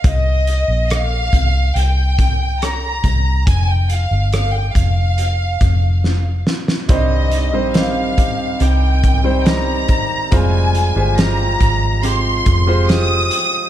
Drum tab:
HH |x-x-x-x-x-x-x-x-|x-x-x-x-x-x-----|x-x-x-x-x-x-x-x-|x-x-x-x-x-x-x-x-|
SD |----r-------r---|----r-------o-oo|----o-------o---|----o-------o---|
BD |o-----o---o---o-|o-----o---o-----|o-----o---o---o-|o-----o---o-----|